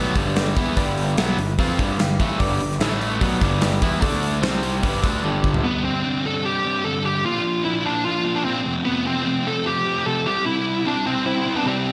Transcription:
Already playing: B1 B2 F#3 B3 G4 B4 D5
0.15 G1 G2 D3 G3, kick, open hi-hat
0.34 G4 B4 D5, snare, open hi-hat
0.56 E2 E3 B3 E4, kick, open hi-hat
0.76 G1 G2 D3 G3 G4 B4 D5, kick, open hi-hat
0.97 open hi-hat
1.17 B1 B2 F#3 B3 G4 B4 E5, snare, open hi-hat
1.38 G1 G2 D3, open hi-hat
1.59 F2 F3 C4 F4 G4 B4 F5, kick, open hi-hat
1.79 G1 G2 D3 G3, kick, open hi-hat
1.98 G1 G2 D3 G4 B4 F5, snare, open hi-hat
2.20 A1 A2 E3 A3, kick, open hi-hat
2.38 G1 G2 D3 G3 G4 B4 D5, kick, open hi-hat
2.60 G1 G2 D3, open hi-hat
2.71 snare
2.79 A1 A2 E3 A3 E4 A4 E5, snare, open hi-hat
3.01 open hi-hat
3.20 B1 B2 F#3 B3 G4 B4 D5, kick, open hi-hat
3.41 G1 G2 D3 G3, kick, open hi-hat
3.61 G4 B4 D5, snare, open hi-hat
3.82 E2 E3 B3 E4, kick, open hi-hat
4.01 D2 D3 A3 D4 A4 D5, kick, open hi-hat
4.23 open hi-hat
4.42 C2 C3 G3 C4 G4 C5, snare, open hi-hat
4.63 open hi-hat
4.83 G1 G2 D3 G3 D4 G4 B4, kick, open hi-hat
5.03 D2 D3 A3 D4, kick, open hi-hat
5.23 G1 G2 D3 G3 D4 G4 A4, high tom
5.44 kick
5.54 floor tom
5.64 G2 D3 G3 B3 C4 D4
5.85 C4
6.04 D3 G3 C4 D4
6.24 G3 C4 D4 A4
6.45 G4
6.65 G3 C4 D4
6.84 G2 D3 G3 C4 D4 A4
7.05 G4
7.24 A#2 F3 A#3 D4 F4
7.65 A#2 F3 A#3 D4 E4
7.85 F3 A#3 D4
8.05 F4
8.24 F3 A#3 D4
8.35 D4
8.44 A#2 F3 A#3 C4 D4
8.65 F2 C3 F3 A3 C4
8.85 F2 C3 F3 A3 B3 C4
9.07 C4
9.25 C3 F3 A3 C4
9.45 F3 A3 C4 A4
9.66 G4
9.85 F3 A3 C4
10.06 F2 C3 F3 A3 C4 A4
10.26 C3 G3 C4 E4 G4
10.46 C3 G3 C4 E4
10.85 C3 G3 C4 D4 E4
11.06 G3 C4 E4
11.26 C4 E4
11.45 G3 C4 E4
11.55 B3 D4
11.66 C3 G3 C4 E4

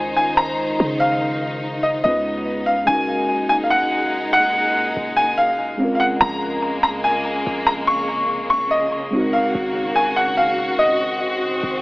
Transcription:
Already playing: C#2 D#3 G#3 C#4 D#4 F4 C5 G#5
0.17 G#5
0.37 A#5
0.80 C#3
1.00 F5
1.83 D#5
2.04 C#2 C#3 G#3 B3 C#4 F4 B4 D#5
2.66 F5
2.85 F#1 A#2 G#3 C#4 D#4 G#5
2.91 F#4 A#4
3.49 G#5
3.64 F5
3.70 F#5
4.33 F#5
4.96 F#1
5.17 G#5
5.38 F5
5.77 C#3 G#3 A#3 C4 C#4
5.83 F4 A#4
5.95 F5
6.00 F#5
6.21 A#1 A#5
6.83 C#2 A#5
7.04 G#5
7.47 A#1
7.67 A#5
7.87 C#6
8.50 C#6
8.71 D#5
9.10 G#3 A#3 C4 D#4 F#4
9.16 F#4 A#4
9.33 F5
9.55 G#1
9.96 G#5
10.16 F#5
10.37 F5
10.79 C4 D#5
11.63 G#1

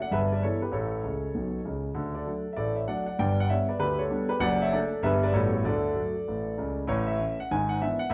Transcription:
0.02 D5 F#5
0.11 G1 G2 B4 E5
0.32 B4 D5
0.43 E3 B3 E4 A4 C#5
0.62 G4 B4
0.72 A1 A2 A4 C#5
1.03 C#2 C#3
1.34 B1 B2
1.65 C#2 C#3
1.94 D2 D3
2.14 A4 D5
2.26 F#3 A3 D4
2.53 A1 A2 D5 E5
2.58 A4
2.76 C#5 E5
2.87 F#3 A3 D4 D5 F#5
3.06 D5 F#5
3.19 G1 G2 D5 G5
3.40 D5 F#5
3.50 G3 B3 D4 C#5 E5
3.69 B4 D5
3.79 D2 D3 G4 B4
3.99 A4 C#5
4.10 G3 B3 D4
4.29 G4 B4
4.40 F#1 F#2 D5 F#5
4.62 C#5 E5
4.73 A3 D4 A4 D5
5.03 G1 G2 G3 B3 G4 B4 E5
5.23 B4 D5
5.33 A1 A2 G3 B3 F#4 A4 C#5
5.53 A4 C#5
5.65 D2 D3 A4 D5
5.95 F#3 A3 F#4
6.28 A1 A2
6.58 C#2 C#3
6.87 A1 A2 C#5
7.07 E5
7.19 E3 A3 C#4
7.40 F#5
7.51 G#1 G#2 G#5
7.69 F#5
7.81 E3 B3 D4 E5
7.99 F#5
8.10 A1 A2

